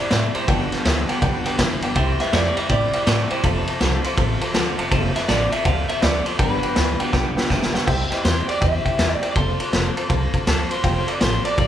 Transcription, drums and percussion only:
0.11 snare, ride
0.35 ride
0.48 kick, ride
0.72 snare, ride
0.85 snare, ride
1.09 ride
1.22 kick, ride
1.46 ride
1.59 kick, snare, ride
1.82 ride
1.95 kick, ride
2.20 snare, ride
2.33 snare, ride
2.57 ride
2.69 kick, ride
2.93 ride
3.07 snare, ride
3.30 ride
3.44 kick, ride
3.67 ride
3.81 snare, ride
4.04 ride
4.17 kick, ride
4.41 ride
4.54 snare, ride
4.79 ride
4.92 kick, ride
5.16 snare, ride
5.29 snare, ride
5.52 ride
5.65 kick, ride
5.89 ride
6.02 snare, ride
6.26 ride
6.39 kick, ride
6.63 ride
6.76 snare, ride
7.00 ride
7.13 kick, snare
7.38 snare
7.50 kick, snare
7.63 snare
7.75 snare
7.88 kick, crash
8.12 snare, ride
8.25 snare, ride
8.49 ride
8.62 kick, ride
8.86 kick, ride
8.99 snare, ride
9.23 ride
9.36 kick, ride
9.60 ride
9.73 snare, ride
9.97 ride
10.10 kick, ride
10.34 kick, ride
10.47 snare, ride
10.71 ride
10.84 kick, ride
11.08 ride
11.21 snare, ride
11.45 ride
11.58 kick, ride

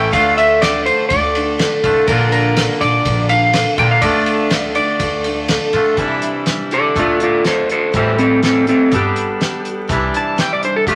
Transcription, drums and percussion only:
0.13 kick, ride
0.38 ride
0.62 snare, ride
0.86 ride
1.10 kick, ride
1.35 ride
1.59 snare, ride
1.84 kick, ride
2.08 kick, ride
2.32 ride
2.57 snare, ride
2.81 ride
3.05 kick, ride
3.29 ride
3.53 snare, ride
3.78 kick, ride
4.02 kick, ride
4.26 ride
4.50 snare, ride
4.75 ride
5.00 kick, ride
5.24 ride
5.48 snare, ride
5.73 ride
5.97 kick, closed hi-hat
6.22 closed hi-hat
6.46 snare, closed hi-hat
6.71 closed hi-hat
6.96 kick, closed hi-hat
7.20 closed hi-hat
7.45 snare, closed hi-hat
7.69 closed hi-hat
7.94 kick, closed hi-hat
8.18 closed hi-hat
8.43 snare, closed hi-hat
8.67 closed hi-hat
8.92 kick, closed hi-hat
9.16 closed hi-hat
9.41 snare, closed hi-hat
9.65 closed hi-hat
9.89 kick, closed hi-hat
10.14 closed hi-hat
10.38 snare, closed hi-hat
10.63 closed hi-hat
10.87 kick, closed hi-hat

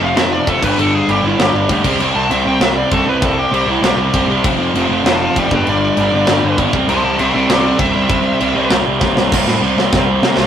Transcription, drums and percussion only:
0.17 snare, crash
0.47 kick, crash
0.63 kick, crash
0.79 crash
1.09 crash
1.40 snare, crash
1.69 kick, crash
1.84 kick, crash
2.00 crash
2.31 crash
2.61 snare, crash
2.92 kick, crash
3.22 kick, crash
3.54 crash
3.84 snare, crash
4.14 kick, crash
4.44 kick, crash
4.75 crash
5.06 snare, crash
5.36 kick, crash
5.51 kick
5.67 crash
5.97 crash
6.27 snare, crash
6.58 kick, crash
6.73 kick
6.89 crash
7.19 crash
7.50 snare, crash
7.79 kick, crash
8.10 kick, crash
8.40 crash
8.70 snare, crash
9.01 kick, snare
9.17 snare
9.32 kick, snare, crash
9.48 snare
9.78 snare
9.93 kick, snare
10.23 snare
10.37 snare

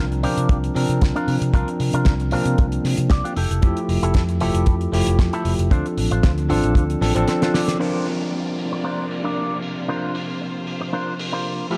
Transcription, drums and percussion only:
0.12 closed hi-hat
0.23 open hi-hat
0.38 closed hi-hat
0.49 kick, closed hi-hat
0.64 closed hi-hat
0.76 open hi-hat
0.90 closed hi-hat
1.01 kick, snare, closed hi-hat
1.16 closed hi-hat
1.28 open hi-hat
1.42 closed hi-hat
1.54 kick, closed hi-hat
1.68 closed hi-hat
1.80 open hi-hat
1.93 closed hi-hat
2.05 kick, snare, closed hi-hat
2.20 closed hi-hat
2.31 open hi-hat
2.45 closed hi-hat
2.58 kick, closed hi-hat
2.72 closed hi-hat
2.84 snare, open hi-hat
2.97 closed hi-hat
3.10 kick, snare, closed hi-hat
3.25 closed hi-hat
3.37 open hi-hat
3.51 closed hi-hat
3.62 kick, closed hi-hat
3.77 closed hi-hat
3.89 open hi-hat
4.03 closed hi-hat
4.14 kick, snare, closed hi-hat
4.29 closed hi-hat
4.40 open hi-hat
4.55 closed hi-hat
4.66 kick, closed hi-hat
4.81 closed hi-hat
4.94 open hi-hat
5.07 closed hi-hat
5.19 kick, snare, closed hi-hat
5.33 closed hi-hat
5.45 open hi-hat
5.59 closed hi-hat
5.71 kick, closed hi-hat
5.86 closed hi-hat
5.98 open hi-hat
6.11 closed hi-hat
6.23 kick, snare, closed hi-hat
6.38 closed hi-hat
6.50 open hi-hat
6.64 closed hi-hat
6.75 kick, closed hi-hat
6.90 closed hi-hat
7.02 snare, open hi-hat
7.16 closed hi-hat
7.28 snare, closed hi-hat
7.42 snare, closed hi-hat
7.54 snare, open hi-hat
7.68 snare, closed hi-hat
7.80 crash
8.06 open hi-hat
8.59 open hi-hat
9.11 open hi-hat
9.62 open hi-hat
10.15 open hi-hat
10.67 open hi-hat
11.19 open hi-hat
11.71 open hi-hat

